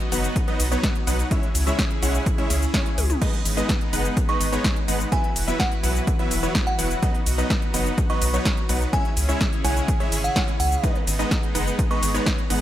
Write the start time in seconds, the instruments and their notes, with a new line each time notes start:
Already playing: analog synth pad B3 D#4 F#4
0.00 closed hi-hat
0.12 sub bass F#1, supersaw synth F#3 B3 D#4 B4 F#5, open hi-hat, ride, shaker
0.24 closed hi-hat, shaker
0.36 kick, closed hi-hat, shaker
0.48 supersaw synth F#3 B3 D#4 B4 D#5, closed hi-hat
0.60 sub bass B1, open hi-hat, ride, shaker
0.72 supersaw synth F#3 B3 D#4 B4 C#5, closed hi-hat, shaker
0.83 kick, snare, closed hi-hat, shaker
0.95 closed hi-hat
1.07 sub bass B1, supersaw synth F#3 B3 D#4 B4 F#5, open hi-hat, ride, shaker
1.19 closed hi-hat, shaker
1.31 analog synth pad C#3 C#4 E4 G#4, supersaw synth G#3 C#4 E4 C#5 E5, kick, closed hi-hat, shaker
1.43 closed hi-hat
1.55 sub bass C#2, open hi-hat, ride, shaker
1.67 supersaw synth G#3 C#4 E4 C#5 E5, closed hi-hat, shaker
1.79 kick, snare, closed hi-hat, shaker
1.91 closed hi-hat
2.02 sub bass B1, supersaw synth G#3 C#4 E4 C#5 F#5, open hi-hat, ride, shaker
2.14 closed hi-hat, shaker
2.26 kick, closed hi-hat, shaker
2.38 supersaw synth G#3 C#4 E4 C#5 E5, closed hi-hat
2.50 sub bass C#2, snare, open hi-hat, ride, shaker
2.62 closed hi-hat, shaker
2.74 supersaw synth G#3 C#4 E4 C#5 G#5, kick, snare, closed hi-hat, shaker
2.86 closed hi-hat
2.98 sub bass C#2, open hi-hat, high tom, ride, shaker
3.10 closed hi-hat, mid tom, shaker
3.22 supersaw synth G#3 B3 D#4 B4 D#5, analog synth pad G#3 B3 D#4, kick, closed hi-hat, crash, shaker
3.34 closed hi-hat
3.45 sub bass G#1, open hi-hat, ride, shaker
3.57 supersaw synth G#3 B3 D#4 B4 D#5, closed hi-hat, shaker
3.69 kick, snare, closed hi-hat, shaker
3.81 closed hi-hat
3.93 sub bass F#1, supersaw synth G#3 B3 D#4 B4 F#5, open hi-hat, ride, shaker
4.05 closed hi-hat, shaker
4.17 kick, closed hi-hat, shaker
4.29 supersaw synth G#3 B3 D#4 B4 D#5, synth bell C#6, closed hi-hat
4.41 sub bass G#1, open hi-hat, ride, shaker
4.52 supersaw synth G#3 B3 D#4 B4 C#5, closed hi-hat, shaker
4.64 kick, snare, closed hi-hat, shaker
4.76 closed hi-hat
4.88 sub bass G#1, supersaw synth G#3 B3 D#4 B4 F#5, open hi-hat, ride, shaker
5.00 closed hi-hat, shaker
5.12 analog synth pad E3 E4 F#4 B4, supersaw synth F#3 B3 E4 B4 E5, synth bell G#5, kick, closed hi-hat, shaker
5.24 closed hi-hat
5.36 sub bass E1, open hi-hat, ride, shaker
5.48 supersaw synth F#3 B3 E4 B4 E5, closed hi-hat, shaker
5.60 synth bell F#5, kick, snare, closed hi-hat, shaker
5.72 closed hi-hat
5.83 sub bass B1, supersaw synth F#3 B3 E4 B4 F#5, open hi-hat, ride, shaker
5.95 closed hi-hat, shaker
6.07 kick, closed hi-hat, shaker
6.19 supersaw synth F#3 B3 E4 B4 E5, closed hi-hat
6.31 sub bass E1, open hi-hat, ride, shaker
6.43 supersaw synth F#3 B3 E4 B4 C#5, shaker
6.55 kick, snare, closed hi-hat, shaker
6.67 synth bell F#5, closed hi-hat
6.79 sub bass E1, supersaw synth F#3 B3 E4 B4 F#5, open hi-hat, ride, shaker
6.91 closed hi-hat, shaker
7.02 supersaw synth F#3 B3 D#4 B4 D#5, analog synth pad B3 D#4, kick, closed hi-hat, shaker
7.15 closed hi-hat
7.26 sub bass B1, open hi-hat, ride, shaker
7.38 supersaw synth F#3 B3 D#4 B4 D#5, closed hi-hat, shaker
7.50 kick, snare, closed hi-hat, shaker
7.62 closed hi-hat
7.74 sub bass F#1, supersaw synth F#3 B3 D#4 B4 F#5, open hi-hat, ride, shaker
7.86 closed hi-hat, shaker
7.98 kick, closed hi-hat, shaker
8.10 supersaw synth F#3 B3 D#4 B4 D#5, synth bell C#6, closed hi-hat
8.22 sub bass B1, open hi-hat, ride, shaker
8.34 supersaw synth F#3 B3 D#4 B4 C#5, shaker
8.45 kick, snare, closed hi-hat, shaker
8.57 closed hi-hat
8.69 sub bass B1, supersaw synth F#3 B3 D#4 B4 F#5, open hi-hat, ride, shaker
8.81 closed hi-hat, shaker
8.93 analog synth pad C#3 C#4 E4 G#4, supersaw synth G#3 C#4 E4 C#5 E5, synth bell G#5, kick, closed hi-hat, shaker
9.05 closed hi-hat
9.17 sub bass C#2, open hi-hat, ride, shaker
9.29 supersaw synth G#3 C#4 E4 C#5 E5, closed hi-hat, shaker
9.41 kick, snare, closed hi-hat, shaker
9.53 closed hi-hat
9.64 sub bass B1, supersaw synth G#3 C#4 E4 C#5 F#5, synth bell G#5, open hi-hat, ride, shaker
9.76 closed hi-hat, shaker
9.88 kick, closed hi-hat, shaker
10.00 supersaw synth G#3 C#4 E4 C#5 E5, closed hi-hat
10.12 sub bass G#1, open hi-hat, ride, shaker
10.24 synth bell F#5, closed hi-hat, shaker
10.36 supersaw synth G#3 C#4 E4 C#5 G#5, kick, snare, closed hi-hat, shaker
10.48 closed hi-hat
10.60 sub bass C#2, synth bell F#5, open hi-hat, ride, shaker
10.72 shaker
10.83 supersaw synth G#3 B3 D#4 B4 D#5, analog synth pad G#3 B3 D#4, kick, closed hi-hat, shaker
10.96 closed hi-hat
11.07 sub bass G#1, open hi-hat, ride, shaker
11.19 supersaw synth G#3 B3 D#4 B4 D#5, closed hi-hat, shaker
11.31 kick, snare, closed hi-hat, shaker
11.43 closed hi-hat
11.55 sub bass F#1, supersaw synth G#3 B3 D#4 B4 F#5, open hi-hat, ride, shaker
11.67 closed hi-hat, shaker
11.79 kick, closed hi-hat, shaker
11.91 supersaw synth G#3 B3 D#4 B4 D#5, synth bell C#6, closed hi-hat
12.03 sub bass G#1, open hi-hat, ride, shaker
12.14 supersaw synth G#3 B3 D#4 B4 C#5, closed hi-hat, shaker
12.26 kick, snare, closed hi-hat, shaker
12.38 closed hi-hat
12.50 sub bass G#1, supersaw synth G#3 B3 D#4 B4 F#5, open hi-hat, ride, shaker